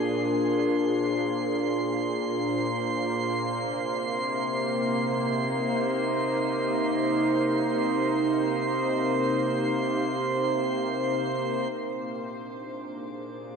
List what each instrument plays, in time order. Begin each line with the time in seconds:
Already playing: ambient pad A#2 A#3 D4 G#4 C5, synth texture C6
3.60 ambient pad C3
4.72 ambient pad D#4
11.72 ambient pad A#2, synth texture D6
12.03 ambient pad D4
12.47 ambient pad G#4